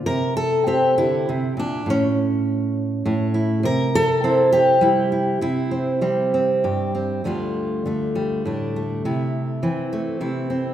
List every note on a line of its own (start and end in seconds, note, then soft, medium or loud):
0.06 1.28 C3 medium
0.06 0.36 A#4 medium
0.37 1.27 A4 loud
0.67 0.97 C4 medium
0.67 0.97 G4 medium
0.98 1.27 D3 medium
0.98 1.87 E4 medium
1.29 1.56 C3 medium
1.57 1.86 A#2 medium
1.57 1.88 D4 medium
1.86 3.04 A2 medium
1.90 3.66 C#4 medium
3.05 3.64 A2 medium
3.05 3.61 C#5 soft
3.34 3.68 E4 soft
3.63 5.37 C3 medium
3.63 4.53 A#4 loud
3.95 4.52 A4 loud
4.24 5.38 C4 medium
4.24 4.82 E4 soft
4.52 5.41 G4 loud
4.81 5.37 G3 medium
4.81 5.11 E4 soft
5.12 5.42 E4 soft
5.41 6.62 C3 medium
5.41 7.24 E4 medium
5.71 6.00 C4 soft
6.01 7.20 G3 medium
6.01 6.32 C4 soft
6.34 6.93 C4 soft
6.64 7.21 G2 medium
6.64 7.21 G4 soft
6.95 7.21 C4 soft
7.24 9.04 D2 soft
7.24 7.84 D3 soft
7.24 8.14 G3 soft
7.24 7.86 A3 soft
7.24 8.46 F4 soft
7.86 9.05 D3 soft
7.86 8.76 A3 soft
8.15 9.04 G3 soft
8.45 9.04 A2 soft
8.45 9.05 D4 soft
8.76 9.63 A3 soft
9.05 9.63 C3 medium
9.05 10.21 E4 medium
9.63 10.74 E3 medium
9.63 10.49 C4 soft
9.93 10.74 A3 soft
10.21 10.74 C3 medium
10.21 10.74 E4 soft
10.50 10.74 C4 soft